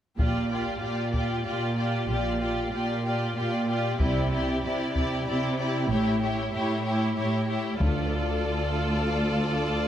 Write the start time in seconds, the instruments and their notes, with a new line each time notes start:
0.18 double bass section A#1, cello section A#2, viola section F4, violin section G4 D5, taiko
0.50 viola section F4, violin section G4 D5
0.80 cello section A#2, viola section F4, violin section G4 D5
1.12 viola section F4, violin section G4 D5, taiko
1.43 cello section A#2, viola section F4, violin section G4 D5
1.76 viola section F4, violin section G4 D5
2.08 double bass section A#1, cello section A#2, viola section F4, violin section G4 D5
2.40 viola section F4, violin section G4 D5
2.71 cello section A#2, viola section F4, violin section G4 D5
3.03 viola section F4, violin section G4 D5
3.35 cello section A#2, viola section F4, violin section G4 D5
3.67 viola section F4, violin section G4 D5
3.99 double bass section C2, cello section C3, viola section E4, violin section G4 D5, taiko
4.30 viola section E4, violin section G4 D5
4.63 cello section C3, viola section E4, violin section G4 D5
4.94 viola section E4, violin section G4 D5, taiko
5.26 cello section C3, viola section E4, violin section G4 D5
5.58 viola section E4, violin section G4 D5
5.89 double bass section A1, cello section A2, viola section E4, violin section G4 C#5
6.21 viola section E4, violin section G4 C#5
6.53 cello section A2, viola section E4, violin section G4 C#5
6.84 viola section E4, violin section G4 C#5
7.16 cello section A2, viola section E4, violin section G4 C#5
7.47 viola section E4, violin section G4 C#5
7.80 cello section D2, double bass section D2, timpani D3, viola section F4, violin section A4 D5, taiko